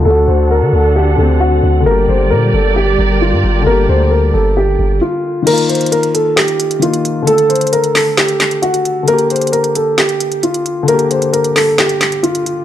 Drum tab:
CC |--------------------------------|--------------------------------|--------------------------------|x-------------------------------|
HH |--------------------------------|--------------------------------|--------------------------------|x-x-xxxxx-x-x---x-x-x-x-x-x-x---|
CP |--------------------------------|--------------------------------|--------------------------------|----------------x---------------|
SD |--------------------------------|--------------------------------|--------------------------------|----------------o---------------|

CC |--------------------------------|--------------------------------|--------------------------------|
HH |x-x-xxxxx-x-o---x-x-x-x-x-x-x---|x-x-xxxxx-x-x---x-x-x-x-x-x-x---|x-x-x-x-x-x-o---x-x-x-x-x-x-x---|
CP |------------x---x---x-----------|----------------x---------------|------------x---x---x-----------|
SD |------------o---o---o-----------|----------------o---------------|------------o---o---o-----------|